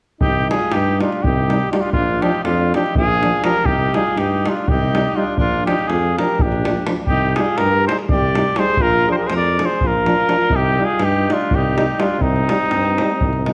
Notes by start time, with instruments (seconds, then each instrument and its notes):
0.21 tuba C2, alto saxophone D#4, cornet G4, davul low
0.49 euphonium G3, trombone D#4, cornet G#4, davul high
0.54 alto saxophone F4
0.62 davul high
0.72 tuba G2, alto saxophone D#4, cornet G4, davul high
1.00 euphonium G3, alto saxophone D4, trombone D#4, cornet F4, davul high
1.12 davul high
1.23 tuba C2, alto saxophone D#4, cornet G4, davul low
1.49 euphonium G3, trombone D#4, davul high
1.71 euphonium G3, alto saxophone D4, trombone D#4, cornet F4, davul high
1.76 alto saxophone D#4, cornet G4
1.81 alto saxophone D4, cornet F4
1.92 tuba A#1, alto saxophone D4, cornet F4, davul low
2.21 euphonium F3, trombone D4, alto saxophone D#4, cornet G4, davul high
2.34 davul high
2.44 tuba F2, alto saxophone D4, cornet F4, davul high
2.74 euphonium F3, trombone D4, alto saxophone D#4, cornet G4, davul high
2.86 davul high
2.95 tuba A#1, alto saxophone F4, cornet G#4, davul low
3.23 euphonium F3, trombone D4, davul high
3.43 euphonium F3, trombone D4, alto saxophone G4, cornet A#4, davul high
3.63 tuba C2, cornet G4, davul low
3.69 alto saxophone D#4
3.94 euphonium G3, trombone D#4, alto saxophone F4, cornet G#4, davul high
4.07 davul high
4.16 tuba G2, alto saxophone D#4, cornet G4, davul high
4.44 euphonium G3, trombone D#4, davul high
4.48 alto saxophone D4, cornet F4
4.57 davul high
4.68 tuba C2, alto saxophone D#4, cornet G4, davul low
4.94 euphonium G3, trombone D#4, davul high
5.15 euphonium G3, alto saxophone D4, trombone D#4, cornet F4
5.36 tuba A#1, alto saxophone D4, cornet F4, davul low
5.66 euphonium F3, trombone D4, alto saxophone D#4, cornet G4, davul high
5.79 davul high
5.88 tuba F2, alto saxophone F4, cornet G#4, davul high
6.18 euphonium F3, trombone D4, cornet A#4, davul high
6.22 alto saxophone G4
6.39 tuba A#1, cornet G4, davul low
6.44 alto saxophone D4
6.52 davul high
6.65 euphonium F3, trombone D4, davul high
6.77 davul high
6.85 euphonium F3, trombone D4, davul high
6.96 davul high
7.06 tuba C2, alto saxophone D#4, cornet G4, davul low
7.36 euphonium G3, trombone D#4, cornet G#4, davul high
7.41 alto saxophone F4
7.58 tuba G2, alto saxophone G4, cornet A#4, davul high
7.87 euphonium G3, trombone D#4, alto saxophone G#4, cornet C5, davul high
7.99 davul high
8.09 tuba C2, alto saxophone G4, cornet D5, davul low
8.35 euphonium G3, trombone D#4, davul high
8.56 euphonium G3, trombone D#4, alto saxophone G#4, cornet C5, davul high
8.77 tuba A#1, alto saxophone F4, davul low
8.82 cornet A#4
9.07 euphonium F3, trombone D4, alto saxophone G#4
9.11 alto saxophone G4, cornet C5
9.17 alto saxophone G#4, cornet A#4
9.27 tuba F2, cornet C5, davul high
9.31 alto saxophone A#4
9.37 cornet D5
9.58 euphonium F3, trombone D4, alto saxophone G#4, davul high
9.66 cornet C5
9.70 davul high
9.81 tuba A#1, alto saxophone F4, davul low
9.87 cornet A#4
10.05 euphonium F3, trombone D4, davul high
10.27 euphonium F3, trombone D4, davul high
10.50 tuba C2, alto saxophone D#4, davul low
10.56 cornet G4
10.78 euphonium G3, trombone D#4, alto saxophone F4
10.85 cornet G#4
10.90 davul high
10.99 tuba G2, alto saxophone D#4, davul high
11.05 cornet G4
11.28 euphonium G3, trombone D#4, davul high
11.33 alto saxophone D4, cornet F4
11.41 davul high
11.51 tuba C2, davul low
11.55 alto saxophone D#4, cornet G4
11.76 euphonium G3, trombone D#4, davul high
11.98 euphonium G3, trombone D#4, cornet F4, davul high
12.02 alto saxophone D4
12.18 tuba C2, alto saxophone C4, cornet D#4, davul low
12.36 davul high
12.49 euphonium G3, trombone D#4, davul high
12.70 tuba G2, davul high
12.85 davul high
12.98 euphonium G3, trombone D#4, davul high
13.10 davul high
13.21 tuba C2, davul low
13.33 davul high
13.46 euphonium G3, trombone D#4, davul high